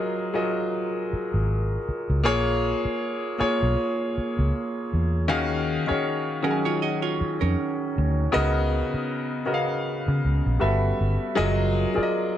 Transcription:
0.00 0.34 F#3 loud
0.00 0.35 F4 loud
0.00 5.23 F4 medium
0.00 0.35 G#4 loud
0.00 2.21 G#4 medium
0.00 0.35 A#4 loud
0.00 2.20 A#4 medium
0.00 0.35 D#5 loud
0.34 1.77 F#3 medium
0.34 1.78 F4 medium
0.34 1.78 G#4 medium
0.34 1.78 A#4 medium
0.34 1.78 D#5 medium
1.13 muted fingered electric bass stroke soft
1.34 1.76 G#1 medium
1.89 muted fingered electric bass stroke soft
2.10 2.27 C#2 medium
2.23 2.73 A#1 loud
2.23 3.31 A#3 loud
2.23 5.26 A#3 medium
2.23 3.32 F4 medium
2.23 5.25 G#4 medium
2.23 3.32 G#4 loud
2.23 5.25 C#5 medium
2.23 3.32 C#5 loud
2.85 muted fingered electric bass stroke soft
3.38 4.82 A#3 medium
3.38 4.82 F4 medium
3.38 4.82 G#4 medium
3.38 4.83 C#5 loud
3.38 muted fingered electric bass stroke soft
3.63 3.75 B1 medium
4.18 muted fingered electric bass stroke soft
4.39 4.51 C#2 medium
4.94 5.31 E2 medium
5.28 5.77 D#2 loud
5.28 5.83 D#3 loud
5.28 5.83 C#4 loud
5.28 8.29 D#4 medium
5.28 5.84 F#4 medium
5.28 5.84 G#4 loud
5.28 8.30 C#5 medium
5.28 5.84 F5 loud
5.87 6.39 D#3 medium
5.87 6.39 C#4 medium
5.87 6.39 F#4 medium
5.87 6.39 G#4 medium
5.87 6.39 C#5 loud
5.91 muted fingered electric bass stroke soft
6.42 7.86 D#3 medium
6.42 7.86 F#3 medium
6.42 7.86 C#4 medium
6.42 6.63 C#4 medium
6.42 7.86 G#4 medium
6.42 6.63 A#4 medium
6.42 6.50 F#5 medium
6.51 7.90 G#5 medium
6.65 6.81 F4 medium
6.65 6.80 C#5 medium
6.82 7.02 F#4 medium
6.82 7.01 D#5 medium
7.02 7.38 F4 medium
7.02 7.38 C#5 medium
7.21 muted fingered electric bass stroke soft
7.41 7.55 F2 medium
7.41 8.29 C#4 medium
7.41 8.29 A#4 medium
7.98 8.26 D2 loud
8.32 8.81 C#2 loud
8.32 9.39 C#3 loud
8.32 11.33 B3 medium
8.32 9.40 B3 loud
8.32 10.58 C#4 medium
8.32 9.40 F#4 loud
8.32 9.40 A#4 loud
8.32 9.40 D#5 loud
8.94 muted fingered electric bass stroke soft
9.46 10.60 C#3 medium
9.46 10.60 B3 medium
9.46 10.58 F#4 medium
9.46 10.60 A#4 medium
9.46 9.54 D#5 medium
9.54 10.64 F5 loud
10.08 10.20 C#3 loud
10.25 10.40 C#2 medium
10.46 10.58 A#1 medium
10.59 10.91 G1 medium
10.59 11.31 G3 medium
10.59 11.36 G3 medium
10.59 11.32 F#4 medium
10.59 11.32 A4 medium
10.59 11.35 A4 medium
10.59 11.32 B4 medium
10.59 11.36 E5 medium
10.59 11.32 E5 medium
11.01 11.16 G1 medium
11.35 11.84 F#1 loud
11.35 11.91 F#3 loud
11.35 11.91 F4 medium
11.35 12.38 F4 medium
11.35 11.91 G#4 loud
11.35 11.91 A#4 medium
11.35 12.38 A#4 medium
11.35 11.92 D#5 loud
11.94 12.38 F#3 medium
11.94 12.38 F4 medium
11.94 12.38 G#4 medium
11.94 12.38 A#4 medium
11.94 12.01 D5 medium
11.94 muted fingered electric bass stroke soft
12.03 12.38 D#5 medium

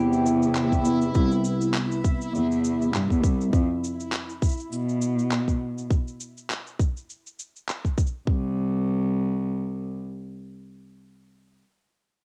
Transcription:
0.00 1.07 E2 medium
0.00 1.15 C3 medium
0.00 3.48 C3 medium
0.00 3.48 B3 medium
0.00 1.36 C4 medium
0.00 0.24 E4 medium
0.00 3.48 E4 medium
0.00 3.54 E4 medium
0.00 0.56 G4 medium
0.00 3.54 E5 medium
0.13 cabasa soft
0.26 0.84 E4 medium
0.26 cabasa medium
0.42 cabasa soft
0.55 1.72 G4 medium
0.55 clap medium
0.55 cabasa soft
0.72 kick medium
0.72 cabasa soft
0.85 1.22 E4 medium
0.85 cabasa medium
1.01 cabasa soft
1.14 1.25 C2 medium
1.14 kick loud
1.14 cabasa soft
1.31 cabasa soft
1.44 cabasa medium
1.61 cabasa soft
1.74 clap loud
1.74 cabasa soft
1.91 cabasa soft
2.04 kick loud
2.04 cabasa medium
2.21 cabasa soft
2.34 2.85 E2 medium
2.34 cabasa soft
2.51 cabasa soft
2.64 cabasa medium
2.81 cabasa soft
2.94 3.04 G2 medium
2.94 clap medium
2.94 cabasa soft
3.10 3.25 E2 medium
3.10 kick medium
3.10 cabasa soft
3.23 3.43 C2 medium
3.23 kick loud
3.23 cabasa medium
3.41 cabasa soft
3.53 3.63 F2 medium
3.53 kick loud
3.53 cabasa soft
3.84 cabasa medium
4.00 cabasa soft
4.12 clap medium
4.12 cabasa soft
4.29 cabasa soft
4.42 kick medium
4.42 cabasa medium
4.45 cabasa medium
4.48 cabasa soft
4.51 cabasa soft
4.53 cabasa soft
4.57 cabasa soft
4.59 cabasa soft
4.72 5.82 B2 medium
4.72 cabasa soft
4.89 cabasa soft
5.02 cabasa medium
5.19 cabasa soft
5.31 clap loud
5.31 cabasa soft
5.48 kick medium
5.48 cabasa soft
5.78 cabasa soft
5.91 kick loud
5.91 cabasa soft
6.08 cabasa soft
6.20 cabasa medium
6.37 cabasa soft
6.50 clap medium
6.50 cabasa soft
6.67 cabasa soft
6.79 kick medium
6.79 cabasa medium
6.97 cabasa soft
7.10 cabasa soft
7.27 cabasa soft
7.39 cabasa medium
7.56 cabasa soft
7.68 clap medium
7.68 cabasa soft
7.85 kick soft
7.85 cabasa soft
7.98 kick medium
7.98 cabasa medium
8.06 cabasa soft
8.27 10.02 C2 medium
8.27 kick medium

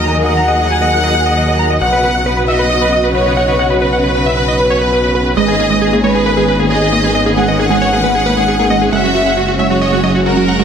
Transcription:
0.00 1.79 D#2 medium
0.00 1.78 D#3 medium
0.00 5.33 F#3 medium
0.00 1.78 A#3 medium
0.00 1.80 G#4 medium
0.00 0.17 D#5 medium
0.00 0.11 A#5 medium
0.15 0.22 D#5 medium
0.26 0.33 D#5 medium
0.26 1.73 F#5 loud
0.37 0.44 A#5 medium
0.48 0.55 D#5 medium
0.59 0.66 D#5 medium
0.70 0.77 G#5 medium
0.81 0.88 D#5 medium
0.92 0.99 F#5 medium
1.04 1.11 D#5 medium
1.15 1.22 F#5 medium
1.26 1.33 D#5 medium
1.37 1.44 D#5 medium
1.48 1.55 D#5 medium
1.59 1.66 A#5 medium
1.70 1.77 D#5 medium
1.81 5.35 B1 medium
1.81 5.33 C#3 medium
1.81 3.57 B3 medium
1.81 5.33 F#4 medium
1.81 2.39 F#5 medium
1.81 1.88 F#5 loud
1.92 1.99 B4 medium
2.04 2.11 B4 medium
2.15 2.22 F#5 medium
2.26 2.33 B4 medium
2.37 2.44 B4 medium
2.48 3.06 D#5 medium
2.48 2.55 E5 medium
2.59 2.66 B4 medium
2.70 2.77 D#5 medium
2.81 2.88 B4 medium
2.92 2.99 D#5 medium
3.04 3.11 B4 medium
3.15 3.22 B4 medium
3.15 3.72 C#5 medium
3.26 3.33 B4 medium
3.37 3.44 F#5 medium
3.48 3.55 B4 medium
3.59 10.64 C#4 medium
3.59 3.66 F#5 loud
3.70 3.77 B4 medium
3.81 5.28 B4 loud
3.81 3.88 B4 medium
3.93 4.00 F#5 medium
4.04 4.11 B4 medium
4.15 4.22 B4 medium
4.26 4.33 E5 medium
4.37 4.44 B4 medium
4.48 4.55 D#5 medium
4.59 4.66 B4 medium
4.70 4.77 C#5 medium
4.81 4.88 B4 medium
4.93 5.00 B4 medium
5.04 5.11 B4 medium
5.15 5.22 B4 medium
5.26 5.33 B4 medium
5.37 8.90 G#1 medium
5.37 8.89 D#3 medium
5.37 5.45 G#3 medium
5.37 8.89 B3 medium
5.37 8.89 G#4 medium
5.37 5.95 D#5 medium
5.37 5.44 D#5 loud
5.48 5.55 G#4 medium
5.59 5.65 A#3 medium
5.59 5.66 G#4 medium
5.70 5.79 G#3 medium
5.70 5.77 D#5 medium
5.82 5.88 G#4 medium
5.93 5.98 A#3 medium
5.93 6.00 G#4 medium
6.04 6.12 G#3 medium
6.04 6.61 B4 medium
6.04 6.11 C#5 medium
6.15 6.22 G#4 medium
6.26 6.31 A#3 medium
6.26 6.33 B4 medium
6.37 6.45 G#3 medium
6.37 6.44 G#4 medium
6.48 6.55 B4 medium
6.59 6.65 A#3 medium
6.59 6.66 G#4 medium
6.70 6.79 G#3 medium
6.70 6.77 G#4 medium
6.70 7.28 D#5 medium
6.82 6.88 G#4 medium
6.92 6.98 A#3 medium
6.92 7.00 D#5 medium
7.04 7.12 G#3 medium
7.04 7.11 G#4 medium
7.15 7.22 D#5 loud
7.26 7.31 A#3 medium
7.26 7.33 G#4 medium
7.37 7.45 G#3 medium
7.37 7.44 G#4 medium
7.37 8.84 F#5 loud
7.48 7.55 D#5 medium
7.59 7.65 A#3 medium
7.59 7.66 G#4 medium
7.70 7.79 G#3 medium
7.70 7.77 G#4 medium
7.82 7.88 C#5 medium
7.92 7.98 A#3 medium
7.92 8.00 G#4 medium
8.04 8.12 G#3 medium
8.04 8.11 B4 medium
8.15 8.22 G#4 medium
8.26 8.31 A#3 medium
8.26 8.33 B4 medium
8.37 8.45 G#3 medium
8.37 8.44 G#4 medium
8.48 8.55 G#4 medium
8.59 8.65 A#3 medium
8.59 8.66 G#4 medium
8.70 8.79 G#3 medium
8.70 8.77 D#5 medium
8.81 8.88 G#4 medium
8.92 10.64 F#1 medium
8.92 10.64 C#3 medium
8.92 10.64 G#3 medium
8.92 8.98 G#3 medium
8.92 10.64 F#4 medium
8.92 9.50 E5 loud
8.92 8.99 F#5 medium
9.04 9.12 F#3 medium
9.04 9.11 F#4 medium
9.15 9.22 F#4 medium
9.26 9.31 G#3 medium
9.26 9.33 F#5 loud
9.37 9.45 F#3 medium
9.37 9.44 F#4 medium
9.48 9.55 F#4 medium
9.59 9.65 G#3 medium
9.59 10.17 C#5 medium
9.59 9.66 E5 medium
9.70 9.79 F#3 medium
9.70 9.77 F#4 medium
9.81 9.88 D#5 medium
9.92 9.98 G#3 medium
9.92 9.99 F#4 medium
10.04 10.12 F#3 medium
10.04 10.11 D#5 medium
10.15 10.22 F#4 medium
10.26 10.31 G#3 medium
10.26 10.33 F#4 medium
10.26 10.64 A#4 medium
10.37 10.45 F#3 medium
10.37 10.44 F#4 medium
10.48 10.55 F#5 medium
10.59 10.64 G#3 medium
10.59 10.64 F#4 medium

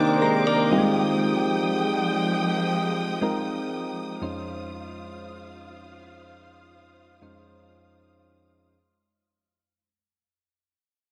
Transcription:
0.00 0.72 C3 medium
0.00 1.32 D#3 medium
0.00 0.21 A#3 medium
0.00 0.23 A#3 medium
0.00 0.24 C4 medium
0.00 0.82 D4 medium
0.00 0.72 D#4 medium
0.00 0.21 G4 medium
0.00 0.22 A#4 medium
0.00 0.68 A#4 medium
0.00 0.68 C5 medium
0.00 0.47 D5 medium
0.00 0.74 D#5 medium
0.00 0.74 F5 medium
0.00 0.73 G5 medium
0.00 0.68 D6 medium
0.22 0.47 G#3 medium
0.22 0.46 G4 medium
0.22 0.46 A#4 medium
0.22 0.68 A#5 medium
0.47 0.82 A#3 medium
0.47 0.95 A#4 medium
0.47 0.94 D5 medium
0.71 4.18 F3 medium
0.71 0.78 G3 medium
0.71 4.18 G#3 medium
0.71 2.07 C4 medium
0.71 2.07 D#4 medium
0.71 2.08 F4 medium
0.71 2.08 G4 loud
0.71 4.18 G5 medium
0.71 8.68 D#6 medium
0.78 2.10 G#3 medium
3.21 4.20 G#3 medium
3.21 4.22 C4 medium
3.21 4.21 D#4 medium
3.21 4.21 F4 medium
3.21 4.22 A#4 medium
4.21 5.82 F2 medium
4.21 5.82 G#3 medium
4.21 5.82 C#4 medium
4.21 5.82 D#4 medium
4.21 8.68 F4 medium
4.21 5.82 F4 medium
4.21 8.68 C5 medium
4.21 5.82 C5 loud
4.21 8.68 F5 medium
7.21 8.23 F2 medium
7.21 8.23 G#3 medium
7.21 8.24 C#4 medium
7.21 8.24 D#4 medium
7.21 8.24 F4 medium
7.21 8.24 C5 medium

